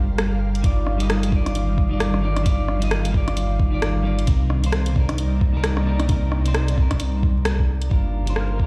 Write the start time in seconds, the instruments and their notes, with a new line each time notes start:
Already playing: sub bass G1, ambient pad G3 F4 G4 A#4 F5
0.18 cross-stick, closed hi-hat
0.55 closed hi-hat
0.62 sub bass G1, ambient pad D#3, clean electric guitar G3 D#4 F4 D5, kick, closed hi-hat
0.87 cross-stick
0.98 clean electric guitar G3 D#4 F4 D#5, closed hi-hat
1.10 cross-stick, closed hi-hat
1.23 closed hi-hat
1.28 clean electric guitar G3 D#4
1.32 clean electric guitar F4 D5, kick
1.46 cross-stick, closed hi-hat
1.55 closed hi-hat
1.78 kick
1.89 clean electric guitar G3 D#4 F4
1.93 clean electric guitar D5
2.00 cross-stick, closed hi-hat
2.14 cross-stick
2.21 clean electric guitar G3 D#4 F4
2.25 clean electric guitar D5
2.36 cross-stick, closed hi-hat
2.43 clean electric guitar G3 D#4 F4 D5, kick, closed hi-hat
2.68 cross-stick
2.80 clean electric guitar G3 D#4 F4 D#5, closed hi-hat
2.91 cross-stick, closed hi-hat
3.05 closed hi-hat
3.09 clean electric guitar G3 D#4
3.14 clean electric guitar F4 D5, kick
3.28 cross-stick, closed hi-hat
3.37 closed hi-hat
3.60 kick
3.70 clean electric guitar G3 D#4 F4 D5
3.82 cross-stick, closed hi-hat
4.03 clean electric guitar G3 D#4 F4
4.07 clean electric guitar D5
4.19 closed hi-hat
4.26 sub bass C2, clean electric guitar C3 C4 D#4, ambient pad C3 G3 A#3 D#4 D5, kick, closed hi-hat
4.30 clean electric guitar A#4
4.50 cross-stick
4.62 clean electric guitar C3 C4 D#4, closed hi-hat
4.66 clean electric guitar C5
4.72 cross-stick, closed hi-hat
4.86 closed hi-hat
4.92 clean electric guitar C3 C4, kick
4.97 clean electric guitar D#4 A#4
5.09 cross-stick, closed hi-hat
5.18 closed hi-hat
5.41 kick
5.53 clean electric guitar C3 C4 D#4
5.57 clean electric guitar A#4
5.64 cross-stick, closed hi-hat
5.77 cross-stick
5.85 clean electric guitar C3 C4 D#4 A#4
6.00 cross-stick, closed hi-hat
6.07 clean electric guitar C3 C4 D#4, kick, closed hi-hat
6.11 clean electric guitar A#4
6.32 cross-stick
6.44 clean electric guitar C3 C4 D#4 C5, closed hi-hat
6.55 cross-stick, closed hi-hat
6.68 closed hi-hat
6.74 clean electric guitar C3 C4, kick
6.80 clean electric guitar D#4 A#4
6.91 kick, cross-stick, closed hi-hat
7.00 closed hi-hat
7.23 kick
7.45 cross-stick, closed hi-hat
7.59 kick
7.82 closed hi-hat
7.89 sub bass G1, clean electric guitar G3 D4 F4, synth texture A#4, kick
7.93 clean electric guitar A#4
8.26 clean electric guitar G3 D4 F4, closed hi-hat
8.30 clean electric guitar C5
8.36 cross-stick
8.56 clean electric guitar G3 D4, kick
8.62 clean electric guitar F4